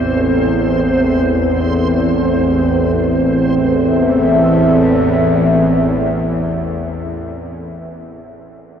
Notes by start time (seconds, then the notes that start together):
Already playing: A1 E2 C4 A4 C5 E5
3.18 A1 E2 C4
3.31 A4
3.45 E5